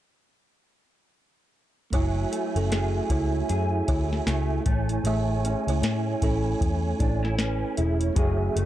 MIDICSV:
0, 0, Header, 1, 6, 480
1, 0, Start_track
1, 0, Key_signature, 3, "major"
1, 0, Tempo, 779626
1, 1188, Time_signature, 4, 2, 24, 8
1, 5329, End_track
2, 0, Start_track
2, 0, Title_t, "Tonewheel organ"
2, 0, Program_c, 0, 16
2, 1172, Note_on_c, 0, 57, 60
2, 1186, Note_on_c, 0, 66, 57
2, 1195, Note_on_c, 0, 80, 56
2, 1205, Note_on_c, 0, 76, 64
2, 2835, Note_off_c, 0, 57, 0
2, 2843, Note_off_c, 0, 66, 0
2, 2847, Note_off_c, 0, 80, 0
2, 2852, Note_off_c, 0, 76, 0
2, 2856, Note_on_c, 0, 57, 67
2, 2867, Note_on_c, 0, 64, 58
2, 2875, Note_on_c, 0, 80, 55
2, 2886, Note_on_c, 0, 73, 66
2, 4523, Note_off_c, 0, 64, 0
2, 4527, Note_off_c, 0, 80, 0
2, 4532, Note_off_c, 0, 73, 0
2, 4551, Note_on_c, 0, 80, 56
2, 4552, Note_on_c, 0, 71, 45
2, 4777, Note_off_c, 0, 80, 0
2, 4778, Note_off_c, 0, 71, 0
2, 4788, Note_on_c, 0, 76, 63
2, 4793, Note_on_c, 0, 68, 55
2, 4925, Note_off_c, 0, 76, 0
2, 4928, Note_off_c, 0, 68, 0
2, 4931, Note_on_c, 0, 64, 47
2, 4931, Note_on_c, 0, 73, 55
2, 4997, Note_off_c, 0, 57, 0
2, 5004, Note_on_c, 0, 57, 65
2, 5014, Note_on_c, 0, 66, 61
2, 5026, Note_on_c, 0, 68, 63
2, 5037, Note_on_c, 0, 76, 72
2, 5159, Note_off_c, 0, 64, 0
2, 5159, Note_off_c, 0, 73, 0
2, 5329, Note_off_c, 0, 57, 0
2, 5329, Note_off_c, 0, 66, 0
2, 5329, Note_off_c, 0, 68, 0
2, 5329, Note_off_c, 0, 76, 0
2, 5329, End_track
3, 0, Start_track
3, 0, Title_t, "Kalimba"
3, 0, Program_c, 1, 108
3, 1192, Note_on_c, 1, 73, 77
3, 1199, Note_on_c, 1, 64, 60
3, 1327, Note_off_c, 1, 73, 0
3, 1331, Note_off_c, 1, 64, 0
3, 1581, Note_on_c, 1, 69, 65
3, 1585, Note_on_c, 1, 61, 50
3, 1805, Note_off_c, 1, 69, 0
3, 1807, Note_off_c, 1, 61, 0
3, 1916, Note_on_c, 1, 73, 63
3, 1918, Note_on_c, 1, 64, 48
3, 2049, Note_off_c, 1, 73, 0
3, 2050, Note_off_c, 1, 64, 0
3, 2393, Note_on_c, 1, 73, 70
3, 2399, Note_on_c, 1, 64, 54
3, 2752, Note_off_c, 1, 73, 0
3, 2755, Note_off_c, 1, 64, 0
3, 3119, Note_on_c, 1, 76, 76
3, 3120, Note_on_c, 1, 68, 56
3, 3342, Note_off_c, 1, 68, 0
3, 3342, Note_off_c, 1, 76, 0
3, 3504, Note_on_c, 1, 73, 60
3, 3506, Note_on_c, 1, 64, 47
3, 3589, Note_off_c, 1, 73, 0
3, 3591, Note_off_c, 1, 64, 0
3, 3836, Note_on_c, 1, 69, 69
3, 3841, Note_on_c, 1, 61, 56
3, 4287, Note_off_c, 1, 69, 0
3, 4290, Note_off_c, 1, 61, 0
3, 5329, End_track
4, 0, Start_track
4, 0, Title_t, "Clean electric guitar"
4, 0, Program_c, 2, 27
4, 1189, Note_on_c, 2, 54, 65
4, 1425, Note_on_c, 2, 57, 49
4, 1666, Note_on_c, 2, 68, 58
4, 1907, Note_on_c, 2, 64, 50
4, 2146, Note_off_c, 2, 68, 0
4, 2148, Note_on_c, 2, 68, 57
4, 2385, Note_off_c, 2, 64, 0
4, 2388, Note_on_c, 2, 64, 51
4, 2626, Note_off_c, 2, 57, 0
4, 2629, Note_on_c, 2, 57, 48
4, 2865, Note_off_c, 2, 54, 0
4, 2867, Note_off_c, 2, 57, 0
4, 2867, Note_on_c, 2, 57, 69
4, 3109, Note_off_c, 2, 57, 0
4, 3111, Note_on_c, 2, 57, 69
4, 3130, Note_off_c, 2, 68, 0
4, 3353, Note_on_c, 2, 61, 47
4, 3835, Note_off_c, 2, 64, 0
4, 3837, Note_on_c, 2, 64, 51
4, 4306, Note_off_c, 2, 64, 0
4, 4308, Note_on_c, 2, 62, 54
4, 4449, Note_off_c, 2, 62, 0
4, 4449, Note_on_c, 2, 64, 43
4, 4544, Note_off_c, 2, 61, 0
4, 4547, Note_on_c, 2, 61, 55
4, 4778, Note_off_c, 2, 64, 0
4, 4785, Note_on_c, 2, 64, 52
4, 5021, Note_on_c, 2, 54, 70
4, 5025, Note_off_c, 2, 64, 0
4, 5027, Note_on_c, 2, 68, 61
4, 5046, Note_off_c, 2, 57, 0
4, 5265, Note_on_c, 2, 57, 53
4, 5329, Note_off_c, 2, 54, 0
4, 5329, Note_off_c, 2, 57, 0
4, 5329, Note_off_c, 2, 61, 0
4, 5329, Note_off_c, 2, 68, 0
4, 5329, End_track
5, 0, Start_track
5, 0, Title_t, "Picked electric bass"
5, 0, Program_c, 3, 34
5, 1186, Note_on_c, 3, 30, 89
5, 1379, Note_off_c, 3, 30, 0
5, 1574, Note_on_c, 3, 30, 74
5, 1842, Note_off_c, 3, 30, 0
5, 1907, Note_on_c, 3, 37, 74
5, 2100, Note_off_c, 3, 37, 0
5, 2153, Note_on_c, 3, 42, 73
5, 2343, Note_off_c, 3, 42, 0
5, 2391, Note_on_c, 3, 38, 72
5, 2582, Note_off_c, 3, 38, 0
5, 2627, Note_on_c, 3, 37, 77
5, 2820, Note_off_c, 3, 37, 0
5, 2870, Note_on_c, 3, 33, 78
5, 3061, Note_off_c, 3, 33, 0
5, 3103, Note_on_c, 3, 33, 86
5, 3412, Note_off_c, 3, 33, 0
5, 3492, Note_on_c, 3, 37, 66
5, 3569, Note_off_c, 3, 37, 0
5, 3585, Note_on_c, 3, 45, 88
5, 3778, Note_off_c, 3, 45, 0
5, 3831, Note_on_c, 3, 33, 78
5, 4022, Note_off_c, 3, 33, 0
5, 4070, Note_on_c, 3, 40, 79
5, 4261, Note_off_c, 3, 40, 0
5, 4312, Note_on_c, 3, 33, 82
5, 4694, Note_off_c, 3, 33, 0
5, 4791, Note_on_c, 3, 28, 77
5, 4982, Note_off_c, 3, 28, 0
5, 5026, Note_on_c, 3, 30, 90
5, 5219, Note_off_c, 3, 30, 0
5, 5270, Note_on_c, 3, 30, 78
5, 5329, Note_off_c, 3, 30, 0
5, 5329, End_track
6, 0, Start_track
6, 0, Title_t, "Drums"
6, 1187, Note_on_c, 9, 36, 90
6, 1187, Note_on_c, 9, 42, 72
6, 1249, Note_off_c, 9, 36, 0
6, 1249, Note_off_c, 9, 42, 0
6, 1432, Note_on_c, 9, 42, 69
6, 1494, Note_off_c, 9, 42, 0
6, 1577, Note_on_c, 9, 42, 40
6, 1639, Note_off_c, 9, 42, 0
6, 1673, Note_on_c, 9, 42, 90
6, 1676, Note_on_c, 9, 38, 81
6, 1735, Note_off_c, 9, 42, 0
6, 1738, Note_off_c, 9, 38, 0
6, 1908, Note_on_c, 9, 36, 70
6, 1909, Note_on_c, 9, 42, 57
6, 1970, Note_off_c, 9, 36, 0
6, 1970, Note_off_c, 9, 42, 0
6, 2151, Note_on_c, 9, 42, 61
6, 2213, Note_off_c, 9, 42, 0
6, 2389, Note_on_c, 9, 42, 60
6, 2390, Note_on_c, 9, 36, 76
6, 2451, Note_off_c, 9, 42, 0
6, 2452, Note_off_c, 9, 36, 0
6, 2541, Note_on_c, 9, 38, 29
6, 2602, Note_off_c, 9, 38, 0
6, 2628, Note_on_c, 9, 38, 94
6, 2634, Note_on_c, 9, 42, 82
6, 2689, Note_off_c, 9, 38, 0
6, 2696, Note_off_c, 9, 42, 0
6, 2868, Note_on_c, 9, 42, 54
6, 2870, Note_on_c, 9, 36, 87
6, 2929, Note_off_c, 9, 42, 0
6, 2931, Note_off_c, 9, 36, 0
6, 3012, Note_on_c, 9, 42, 44
6, 3074, Note_off_c, 9, 42, 0
6, 3108, Note_on_c, 9, 42, 75
6, 3170, Note_off_c, 9, 42, 0
6, 3354, Note_on_c, 9, 42, 65
6, 3416, Note_off_c, 9, 42, 0
6, 3499, Note_on_c, 9, 42, 45
6, 3560, Note_off_c, 9, 42, 0
6, 3591, Note_on_c, 9, 42, 88
6, 3594, Note_on_c, 9, 38, 87
6, 3653, Note_off_c, 9, 42, 0
6, 3656, Note_off_c, 9, 38, 0
6, 3829, Note_on_c, 9, 36, 71
6, 3830, Note_on_c, 9, 42, 58
6, 3891, Note_off_c, 9, 36, 0
6, 3891, Note_off_c, 9, 42, 0
6, 4070, Note_on_c, 9, 36, 66
6, 4075, Note_on_c, 9, 42, 64
6, 4132, Note_off_c, 9, 36, 0
6, 4137, Note_off_c, 9, 42, 0
6, 4310, Note_on_c, 9, 36, 84
6, 4311, Note_on_c, 9, 42, 64
6, 4372, Note_off_c, 9, 36, 0
6, 4372, Note_off_c, 9, 42, 0
6, 4462, Note_on_c, 9, 38, 28
6, 4524, Note_off_c, 9, 38, 0
6, 4547, Note_on_c, 9, 38, 94
6, 4553, Note_on_c, 9, 42, 77
6, 4609, Note_off_c, 9, 38, 0
6, 4615, Note_off_c, 9, 42, 0
6, 4786, Note_on_c, 9, 42, 58
6, 4848, Note_off_c, 9, 42, 0
6, 4930, Note_on_c, 9, 42, 48
6, 4991, Note_off_c, 9, 42, 0
6, 5026, Note_on_c, 9, 36, 96
6, 5026, Note_on_c, 9, 42, 79
6, 5088, Note_off_c, 9, 36, 0
6, 5088, Note_off_c, 9, 42, 0
6, 5274, Note_on_c, 9, 42, 73
6, 5329, Note_off_c, 9, 42, 0
6, 5329, End_track
0, 0, End_of_file